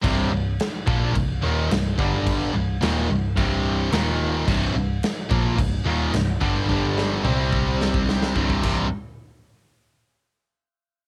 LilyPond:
<<
  \new Staff \with { instrumentName = "Distorted electric guitar" } { \clef bass \time 4/4 \key c \minor \tempo 4 = 108 <c, g, c>8 <c, g,>8 r8 <bes, f bes>8 <c, g,>8 <ees, bes, ees>8 <c, g,>8 <g, d g>8~ | <g, d g>8 <c, g,>8 <ees, bes, ees>8 <c, g,>8 <c, g, c>4 <ees, bes, ees>4 | <c, g, c>8 <c, g,>8 r8 <bes, f bes>8 <c, g,>8 <ees, bes, ees>8 <c, g,>8 <g, d g>8 | <g, d g>4 <c g c'>2 <c, g, c>8 <c, g, c>8 |
r1 | }
  \new Staff \with { instrumentName = "Overdriven electric guitar" } { \clef bass \time 4/4 \key c \minor <c, g, c>8 <c, g,>8 r8 <bes, f bes>8 <c, g,>8 <ees, bes, ees>8 <c, g,>8 <g, d g>8~ | <g, d g>8 <c, g,>8 <ees, bes, ees>8 <c, g,>8 <c, g, c>4 <ees, bes, ees>4 | <c, g, c>8 <c, g,>8 r8 <bes, f bes>8 <c, g,>8 <ees, bes, ees>8 <c, g,>8 <g, d g>8 | <g, d g>4 <c g c'>2 <c, g, c>8 <c, g, c>8 |
r1 | }
  \new Staff \with { instrumentName = "Overdriven electric guitar" } { \clef bass \time 4/4 \key c \minor <c, g, c>8 <c, g,>8 r8 <bes, f bes>8 <c, g,>8 <ees, bes, ees>8 <c, g,>8 <g, d g>8~ | <g, d g>8 <c, g,>8 <ees, bes, ees>8 <c, g,>8 <c, g, c>4 <ees, bes, ees>4 | <c, g, c>8 <c, g,>8 r8 <bes, f bes>8 <c, g,>8 <ees, bes, ees>8 <c, g,>8 <g, d g>8 | <g, d g>4 <c g c'>2 <c, g, c>8 <c, g, c>8 |
r1 | }
  \new Staff \with { instrumentName = "Picked electric bass" } { \clef bass \time 4/4 \key c \minor c,,8 c,,8 r8 bes,,8 c,,8 ees,,8 c,,8 g,,8~ | g,,8 c,,8 ees,,8 c,,8 c,,4 ees,,4 | c,,8 c,,8 r8 bes,,8 c,,8 ees,,8 c,,8 g,,8 | g,,4 c,2 c,,8 c,,8 |
r1 | }
  \new DrumStaff \with { instrumentName = "Drums" } \drummode { \time 4/4 <cymc bd>4 <cymc sn>8 bd8 <cymc bd>4 <cymc sn>8 bd8 | <cymc bd>4 <cymc sn>4 <cymc bd>4 <cymc sn>4 | <cymc bd>4 <cymc sn>8 bd8 <cymc bd>4 <cymc sn>8 bd8 | bd8 sn8 toml8 bd8 sn16 bd16 sn16 sn16 bd16 bd16 <cymc bd>8 |
r4 r4 r4 r4 | }
>>